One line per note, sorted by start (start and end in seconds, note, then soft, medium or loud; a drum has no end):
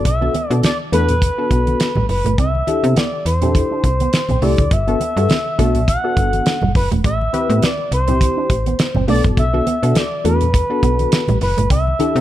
0.00 0.12 B3 medium
0.00 0.12 D4 medium
0.00 0.12 F#4 medium
0.00 0.12 A4 medium
0.05 0.30 B1 loud
0.05 0.49 E5 medium
0.05 kick loud
0.05 closed hi-hat medium
0.05 muted conga soft
0.21 0.33 B3 medium
0.21 0.33 D4 medium
0.21 0.33 F#4 medium
0.21 0.34 A4 medium
0.21 muted clean electric guitar stroke soft
0.21 high conga medium
0.34 0.46 B3 medium
0.34 closed hi-hat medium
0.34 muted conga soft
0.34 high conga medium
0.49 0.61 B2 loud
0.49 0.70 B3 medium
0.49 0.59 D4 medium
0.49 0.70 D4 medium
0.49 0.70 F#4 medium
0.49 0.70 A4 loud
0.49 0.60 D5 medium
0.49 closed hi-hat soft
0.63 0.78 D5 medium
0.63 snare loud
0.63 closed hi-hat medium
0.63 muted conga soft
0.63 high conga medium
0.92 1.31 E2 medium
0.92 1.04 A3 medium
0.92 1.14 B3 medium
0.92 1.14 D4 medium
0.92 1.14 F#4 medium
0.92 1.14 A4 medium
0.92 2.06 B4 medium
0.92 closed hi-hat medium
0.92 muted conga soft
1.09 closed hi-hat medium
1.09 low conga medium
1.22 kick loud
1.22 closed hi-hat loud
1.22 muted conga soft
1.22 high conga medium
1.38 1.91 B3 medium
1.38 1.91 D4 medium
1.38 1.92 F#4 medium
1.38 1.92 A4 medium
1.51 1.75 B1 medium
1.51 1.62 B3 medium
1.51 kick medium
1.51 closed hi-hat medium
1.51 muted conga soft
1.67 closed hi-hat soft
1.67 high conga medium
1.80 snare loud
1.80 closed hi-hat medium
1.95 2.07 A1 medium
1.95 2.05 G3 medium
1.95 high conga medium
1.95 low conga medium
2.09 2.23 F#1 medium
2.09 2.37 B4 loud
2.09 muted clean electric guitar stroke soft
2.09 open hi-hat medium
2.09 muted conga soft
2.25 2.36 G1 medium
2.25 2.34 A3 medium
2.25 closed hi-hat medium
2.25 low conga medium
2.38 2.63 C2 loud
2.38 2.50 C4 medium
2.38 2.99 E5 loud
2.38 kick loud
2.38 closed hi-hat medium
2.55 high conga medium
2.67 3.01 D4 medium
2.67 3.02 E4 medium
2.67 3.02 G4 medium
2.67 3.02 A4 loud
2.67 muted clean electric guitar stroke soft
2.67 closed hi-hat medium
2.67 muted conga soft
2.67 high conga medium
2.84 2.94 C3 loud
2.84 2.93 B3 medium
2.84 closed hi-hat soft
2.96 3.08 B3 medium
2.96 3.26 D5 medium
2.96 snare loud
2.96 closed hi-hat medium
2.96 muted conga soft
2.96 high conga medium
3.13 muted clean electric guitar stroke soft
3.26 3.64 E2 medium
3.26 4.45 C5 medium
3.26 closed hi-hat medium
3.42 3.51 C4 medium
3.42 3.88 D4 medium
3.42 3.88 E4 medium
3.42 3.88 G4 medium
3.42 3.88 A4 medium
3.42 closed hi-hat medium
3.42 low conga medium
3.55 kick loud
3.55 closed hi-hat medium
3.55 muted conga soft
3.55 high conga medium
3.71 3.80 D4 medium
3.84 4.08 C2 medium
3.84 muted clean electric guitar stroke soft
3.84 kick medium
3.84 closed hi-hat medium
4.00 4.09 B3 medium
4.00 closed hi-hat soft
4.00 high conga medium
4.13 muted clean electric guitar stroke soft
4.13 snare loud
4.13 closed hi-hat medium
4.29 4.40 B1 medium
4.29 4.38 C4 medium
4.29 closed hi-hat soft
4.29 high conga medium
4.29 low conga medium
4.42 4.56 C2 loud
4.42 4.54 A3 medium
4.42 4.63 D4 medium
4.42 4.63 E4 medium
4.42 4.64 G4 medium
4.42 4.64 A4 medium
4.42 4.74 D5 medium
4.42 open hi-hat medium
4.58 4.69 D2 medium
4.58 kick loud
4.58 closed hi-hat medium
4.58 low conga medium
4.71 4.96 G1 loud
4.71 5.88 E5 loud
4.71 kick loud
4.71 closed hi-hat medium
4.87 4.99 B3 medium
4.87 4.99 D4 medium
4.87 5.00 F#4 medium
4.87 5.00 A4 loud
4.87 muted clean electric guitar stroke soft
4.87 closed hi-hat soft
4.87 high conga medium
5.00 5.12 B3 medium
5.00 closed hi-hat medium
5.00 high conga medium
5.17 5.27 G2 loud
5.17 5.36 B3 medium
5.17 5.36 D4 medium
5.17 5.26 D4 medium
5.17 5.36 F#4 medium
5.17 5.36 A4 loud
5.17 closed hi-hat soft
5.29 snare loud
5.29 closed hi-hat medium
5.29 muted conga soft
5.29 high conga medium
5.58 5.97 B1 loud
5.58 5.70 A3 medium
5.58 5.80 B3 medium
5.58 5.80 D4 loud
5.58 5.80 F#4 medium
5.58 5.80 A4 loud
5.58 kick medium
5.58 closed hi-hat medium
5.58 muted conga soft
5.75 closed hi-hat soft
5.75 low conga medium
5.88 6.72 F#5 loud
5.88 kick loud
5.88 closed hi-hat medium
5.88 high conga medium
6.04 6.57 B3 medium
6.04 6.57 D4 medium
6.04 6.58 F#4 medium
6.04 6.58 A4 medium
6.17 6.41 G1 medium
6.17 6.28 B3 medium
6.17 kick medium
6.17 closed hi-hat medium
6.17 muted conga soft
6.33 closed hi-hat soft
6.33 high conga medium
6.46 snare loud
6.46 closed hi-hat medium
6.62 6.73 F#1 medium
6.62 6.71 G3 medium
6.62 high conga medium
6.62 low conga medium
6.75 6.89 F#1 loud
6.75 6.89 B4 medium
6.75 muted clean electric guitar stroke soft
6.75 kick loud
6.75 open hi-hat medium
6.75 muted conga soft
6.91 7.02 E1 loud
6.91 7.00 A3 medium
6.91 closed hi-hat medium
6.91 low conga medium
7.04 7.29 A1 loud
7.04 7.16 A3 medium
7.04 7.65 E5 loud
7.04 kick loud
7.04 closed hi-hat medium
7.04 muted conga soft
7.21 high conga medium
7.33 7.67 C4 loud
7.33 7.68 E4 medium
7.33 7.68 G4 medium
7.33 7.68 B4 loud
7.33 muted clean electric guitar stroke soft
7.33 closed hi-hat medium
7.33 high conga medium
7.49 7.60 A2 loud
7.49 7.59 B3 medium
7.49 closed hi-hat soft
7.62 7.74 B3 medium
7.62 7.92 D5 medium
7.62 snare loud
7.62 closed hi-hat medium
7.62 muted conga soft
7.62 high conga medium
7.79 muted clean electric guitar stroke soft
7.92 8.30 C2 medium
7.92 9.05 C5 loud
7.92 closed hi-hat medium
7.92 muted conga soft
8.08 8.54 C4 medium
8.08 8.17 C4 medium
8.08 8.54 E4 medium
8.08 8.54 G4 medium
8.08 8.54 C5 medium
8.08 closed hi-hat medium
8.08 low conga medium
8.21 kick loud
8.21 closed hi-hat medium
8.21 muted conga soft
8.21 high conga medium
8.37 8.46 D4 medium
8.50 8.74 A1 medium
8.50 muted clean electric guitar stroke soft
8.50 kick medium
8.50 closed hi-hat medium
8.66 8.75 B3 medium
8.66 closed hi-hat soft
8.66 high conga medium
8.79 muted clean electric guitar stroke soft
8.79 snare loud
8.79 closed hi-hat medium
8.79 muted conga soft
8.95 9.06 G1 medium
8.95 9.04 C4 medium
8.95 high conga medium
8.95 low conga medium
9.08 9.22 B1 loud
9.08 9.19 A3 medium
9.08 9.44 B3 medium
9.08 9.44 D4 medium
9.08 9.44 F#4 medium
9.08 9.44 A4 loud
9.08 9.22 D5 loud
9.08 open hi-hat medium
9.08 muted conga soft
9.24 9.35 F#1 medium
9.24 kick loud
9.24 closed hi-hat medium
9.24 low conga medium
9.37 9.62 B1 medium
9.37 9.98 E5 loud
9.37 kick loud
9.37 closed hi-hat medium
9.53 9.65 B3 medium
9.53 9.65 D4 medium
9.53 9.66 F#4 medium
9.53 9.66 A4 medium
9.53 muted clean electric guitar stroke soft
9.53 high conga medium
9.66 9.78 B3 medium
9.66 closed hi-hat medium
9.66 high conga medium
9.82 9.94 B2 loud
9.82 10.02 B3 loud
9.82 9.92 D4 medium
9.82 10.02 D4 medium
9.82 10.02 F#4 medium
9.82 10.02 A4 loud
9.82 closed hi-hat soft
9.95 10.25 D5 medium
9.95 snare loud
9.95 closed hi-hat medium
9.95 high conga medium
10.24 10.63 E2 medium
10.24 10.36 A3 medium
10.24 10.46 B3 medium
10.24 10.46 D4 medium
10.24 10.46 F#4 medium
10.24 10.46 A4 medium
10.24 11.38 B4 loud
10.24 closed hi-hat medium
10.24 muted conga soft
10.41 closed hi-hat medium
10.41 low conga medium
10.54 kick loud
10.54 closed hi-hat medium
10.54 high conga medium
10.70 11.23 B3 medium
10.70 11.23 D4 medium
10.70 11.24 F#4 medium
10.70 11.24 A4 medium
10.83 11.08 B1 medium
10.83 10.94 B3 medium
10.83 kick medium
10.83 closed hi-hat medium
10.83 muted conga soft
10.99 closed hi-hat soft
10.99 high conga medium
11.12 snare loud
11.12 closed hi-hat loud
11.28 11.39 A1 loud
11.28 11.37 G3 medium
11.28 closed hi-hat soft
11.28 high conga medium
11.28 low conga medium
11.41 11.55 F#1 loud
11.41 11.69 B4 medium
11.41 muted clean electric guitar stroke soft
11.41 open hi-hat medium
11.41 muted conga soft
11.57 11.68 G1 loud
11.57 11.67 A3 medium
11.57 closed hi-hat medium
11.57 low conga medium
11.70 11.95 C2 loud
11.70 11.82 C4 medium
11.70 12.21 E5 medium
11.70 kick loud
11.70 closed hi-hat medium
11.87 high conga medium
11.99 12.21 D4 medium
11.99 12.21 E4 medium
11.99 12.21 G4 medium
11.99 12.21 A4 loud
11.99 muted clean electric guitar stroke soft
11.99 closed hi-hat medium
11.99 muted conga soft
11.99 high conga medium
12.16 12.21 C3 loud
12.16 12.21 B3 medium
12.16 closed hi-hat soft